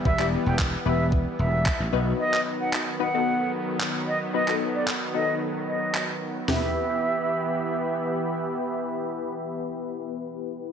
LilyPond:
<<
  \new Staff \with { instrumentName = "Flute" } { \time 4/4 \key e \minor \tempo 4 = 112 e''8 r16 g''16 r8 e''8 r8 e''8. r8. | dis''8 r16 fis''16 r8 fis''4 r4 dis''16 r16 | dis''8 r16 d''16 r8 dis''8 r8 dis''8. r8. | e''2. r4 |
r1 | }
  \new Staff \with { instrumentName = "Analog polysynth" } { \time 4/4 \key e \minor <b e' g' b'>16 <b e' g' d''>8. r8 <b e' g' b'>4~ <b e' g' b'>16 r8. <b dis' fis' b'>8~ | <b dis' fis' b'>4 r8 <b dis' fis' b'>16 <b dis' fis' a'>4~ <b dis' fis' a'>16 r4 | <b dis' fis' b'>16 <b dis' fis' a'>8. r8 <b dis' fis' a'>4~ <b dis' fis' a'>16 r4 r16 | <b e' g' b'>1~ |
<b e' g' b'>1 | }
  \new Staff \with { instrumentName = "Supersaw synth" } { \time 4/4 \key e \minor <e g b>2.~ <e g b>8 <dis fis b>8~ | <dis fis b>1~ | <dis fis b>1 | <e b g' e'' b''>1~ |
<e b g' e'' b''>1 | }
  \new Staff \with { instrumentName = "Slap bass" } { \clef bass \time 4/4 \key e \minor e,,8. e,,8. e,,4 e,,8. a,,16 b,,8 | r1 | r1 | r1 |
r1 | }
  \new DrumStaff \with { instrumentName = "Drums" } \drummode { \time 4/4 bd16 hc8. <hc bd>4 bd4 <hc bd>4 | r16 hc8. hc4 r4 hc4 | r16 hc8. hc4 r4 hc4 | <hho sn tomfh>4 r4 r4 r4 |
r4 r4 r4 r4 | }
>>